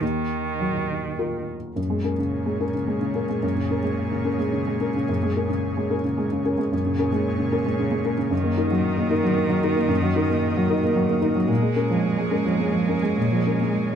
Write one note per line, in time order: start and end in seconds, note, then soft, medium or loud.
0.01 1.73 D#2 soft
0.01 1.48 D#3 soft
0.60 1.54 F#3 soft
1.19 1.73 F4 soft
1.19 1.73 A#4 soft
1.76 3.38 F#2 soft
1.76 6.68 A#2 soft
1.76 6.68 A#3 soft
1.76 6.68 G#4 soft
1.76 6.69 C#5 soft
1.90 2.13 G#3 soft
2.04 2.17 C#4 soft
2.04 2.17 A#4 soft
2.18 2.63 C#3 soft
2.46 2.68 G#3 soft
2.60 2.73 C#4 soft
2.60 2.73 A#4 soft
2.74 2.96 C#3 soft
2.88 3.10 G#3 soft
3.01 3.23 C#3 soft
3.15 3.27 C#4 soft
3.15 3.28 A#4 soft
3.29 3.51 G#3 soft
3.42 5.04 F#2 soft
3.56 3.78 C#3 soft
3.70 3.83 C#4 soft
3.70 3.83 A#4 soft
3.83 4.28 G#3 soft
4.11 4.33 C#3 soft
4.25 4.37 C#4 soft
4.25 4.38 A#4 soft
4.39 4.61 G#3 soft
4.52 4.75 C#3 soft
4.67 4.89 G#3 soft
4.80 4.93 C#4 soft
4.80 4.94 A#4 soft
4.95 5.17 C#3 soft
5.09 6.68 F#2 soft
5.23 5.44 G#3 soft
5.37 5.49 C#4 soft
5.37 5.49 A#4 soft
5.49 5.93 C#3 soft
5.77 5.99 G#3 soft
5.90 6.03 C#4 soft
5.90 6.03 A#4 soft
6.04 6.26 C#3 soft
6.18 6.40 G#3 soft
6.32 6.53 C#3 soft
6.45 6.57 C#4 soft
6.45 6.57 A#4 soft
6.58 6.80 G#3 soft
6.72 8.28 F#2 soft
6.72 8.34 A#2 soft
6.72 11.46 A#3 medium
6.72 8.28 G#4 soft
6.72 8.28 C#5 medium
6.85 7.07 C#3 soft
6.99 7.11 C#4 soft
6.99 7.11 A#4 soft
7.12 7.55 G#3 soft
7.38 7.60 C#3 soft
7.52 7.64 C#4 soft
7.52 7.64 A#4 soft
7.66 7.87 G#3 soft
7.79 8.00 C#3 soft
7.91 8.13 G#3 soft
8.05 8.17 C#4 soft
8.05 8.17 A#4 soft
8.17 8.31 C#3 soft
8.31 9.85 F#2 soft
8.31 11.49 D#3 soft
8.31 11.50 A#4 medium
8.31 11.50 D#5 medium
8.43 8.65 A#3 soft
8.57 8.69 D#4 soft
8.57 8.70 A#4 soft
8.71 9.13 F#3 soft
8.98 9.19 A#3 soft
9.10 9.22 D#4 soft
9.10 9.23 A#4 soft
9.23 9.45 F#3 soft
9.36 9.58 A#3 soft
9.49 9.71 F#3 soft
9.63 9.75 D#4 soft
9.63 9.76 A#4 soft
9.76 9.97 A#3 soft
9.88 11.45 F#2 medium
10.03 10.24 F#3 soft
10.16 10.28 D#4 soft
10.16 10.28 A#4 soft
10.29 10.72 A#3 soft
10.57 10.78 F#3 soft
10.70 10.81 D#4 soft
10.70 10.82 A#4 soft
10.84 11.04 A#3 soft
10.96 11.17 F#3 soft
11.09 11.30 A#3 soft
11.21 11.34 D#4 soft
11.21 11.34 A#4 soft
11.35 11.49 F#3 soft
11.48 13.12 A#2 medium
11.48 13.95 G#3 medium
11.48 13.95 A#3 medium
11.48 13.95 G#4 medium
11.48 13.95 C#5 medium
11.62 11.84 G#3 soft
11.76 11.88 C#4 soft
11.76 11.89 A#4 soft
11.90 12.34 F3 soft
12.18 12.40 G#3 soft
12.31 12.44 C#4 soft
12.31 12.44 A#4 soft
12.45 12.67 F3 soft
12.58 12.81 G#3 soft
12.72 12.96 F3 soft
12.88 13.01 C#4 soft
12.88 13.01 A#4 soft
13.03 13.26 G#3 soft
13.17 13.95 A#2 soft
13.32 13.55 F3 soft
13.46 13.59 C#4 soft
13.46 13.60 A#4 soft
13.61 13.95 G#3 soft
13.92 13.95 F3 soft